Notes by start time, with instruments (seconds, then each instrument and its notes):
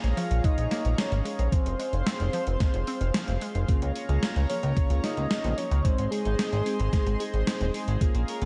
Already playing: analog synth pad G#4 C#5 F5 A#5
0.04 analog synth bass A#1, closed hi-hat
0.17 synth arpeggio sound F3, soft synth lead F5, open hi-hat
0.31 analog synth bass A#1, closed hi-hat
0.44 synth arpeggio sound G#3, soft synth lead D#5, kick, closed hi-hat
0.58 analog synth bass A#1, closed hi-hat
0.71 synth arpeggio sound A#3, snare, open hi-hat
0.85 analog synth bass A#1, closed hi-hat
0.98 synth arpeggio sound F3, soft synth lead C#5, snare, closed hi-hat
1.12 analog synth bass G#1, closed hi-hat
1.25 synth arpeggio sound G#3, open hi-hat
1.39 analog synth bass A#1, closed hi-hat
1.52 synth arpeggio sound F3, soft synth lead C5, analog synth pad C5 C6, kick, closed hi-hat
1.66 analog synth bass F1, closed hi-hat
1.79 synth arpeggio sound G#3, open hi-hat
1.93 analog synth bass F1, closed hi-hat
2.06 synth arpeggio sound C4, snare, closed hi-hat
2.20 analog synth bass F1, closed hi-hat
2.33 synth arpeggio sound F3, open hi-hat
2.47 analog synth bass F1, closed hi-hat
2.60 synth arpeggio sound G#3, kick, snare, closed hi-hat
2.74 analog synth bass F1, closed hi-hat
2.87 synth arpeggio sound C4, open hi-hat
3.01 analog synth bass F1, closed hi-hat
3.14 synth arpeggio sound F3, snare, closed hi-hat
3.28 analog synth bass F1, closed hi-hat
3.41 synth arpeggio sound G#3, open hi-hat
3.55 analog synth bass F1, closed hi-hat
3.69 clean electric guitar C#3, fm electric piano A#3 C#4 F4 G#4, analog synth pad C#5 A#5, kick, closed hi-hat
3.82 analog synth bass C#2, clean electric guitar C#3, closed hi-hat
3.96 clean electric guitar C#4, open hi-hat
4.09 analog synth bass C#2, clean electric guitar G#3, fm electric piano A#3 C#4 F4 G#4, closed hi-hat
4.23 clean electric guitar G#3, snare, closed hi-hat
4.36 analog synth bass C#2, clean electric guitar C#3, closed hi-hat
4.49 clean electric guitar F3, fm electric piano A#3 C#4 F4 G#4, soft synth lead C#5, open hi-hat
4.63 analog synth bass C#2, clean electric guitar C#3, closed hi-hat
4.77 clean electric guitar C#3, kick, closed hi-hat
4.90 analog synth bass C#2, fm electric piano A#3 C#4 F4 G#4, closed hi-hat
5.03 fm electric piano A#3 C#4 F4 G#4, clean electric guitar C#4, soft synth lead D#5, snare, open hi-hat
5.17 analog synth bass C#2, clean electric guitar G#3, closed hi-hat
5.31 clean electric guitar G#3, snare, closed hi-hat
5.44 analog synth bass A#1, clean electric guitar C#3, fm electric piano A#3 C#4 F4 G#4, closed hi-hat
5.57 clean electric guitar F3, fm electric piano A#3 C#4 F4 C#5, soft synth lead C#5, open hi-hat
5.71 analog synth bass C#2, clean electric guitar C#3, closed hi-hat
5.84 clean electric guitar G#3, fm electric piano G#3 C4 D#4 G#4, analog synth pad G#4 C5 D#5 C6, soft synth lead C5, kick, closed hi-hat
5.98 analog synth bass G#1, clean electric guitar G#3, closed hi-hat
6.11 soft synth lead G#4, clean electric guitar G#4, open hi-hat
6.25 analog synth bass G#1, fm electric piano G#3 C4 D#4 G#4, clean electric guitar D#4, closed hi-hat
6.38 clean electric guitar D#4, snare, closed hi-hat
6.52 analog synth bass G#1, clean electric guitar G#3, closed hi-hat
6.66 fm electric piano G#3 C4 D#4 G#4, clean electric guitar C4, open hi-hat
6.79 analog synth bass G#1, clean electric guitar G#3, closed hi-hat
6.93 clean electric guitar G#3, kick, snare, closed hi-hat
7.06 analog synth bass G#1, clean electric guitar G#3, fm electric piano G#3 C4 D#4 G#4, closed hi-hat
7.20 fm electric piano G#3 C4 D#4 G#4, clean electric guitar G#4, open hi-hat
7.33 analog synth bass G#1, clean electric guitar D#4, closed hi-hat
7.47 clean electric guitar D#4, snare, closed hi-hat
7.60 analog synth bass D#1, fm electric piano G#3 C4 D#4 G#4, clean electric guitar G#3, closed hi-hat
7.74 fm electric piano G#3 C4 D#4 C5, clean electric guitar C4, open hi-hat
7.88 analog synth bass G#1, clean electric guitar G#3, closed hi-hat
8.01 fm electric piano A#3 C#4 F4 G#4, clean electric guitar A#3, analog synth pad C#5 F5 A#5, kick, closed hi-hat
8.14 analog synth bass A#1, clean electric guitar A#3, closed hi-hat
8.28 clean electric guitar A#4, open hi-hat
8.41 analog synth bass A#1, fm electric piano A#3 C#4 F4 G#4, clean electric guitar F4, closed hi-hat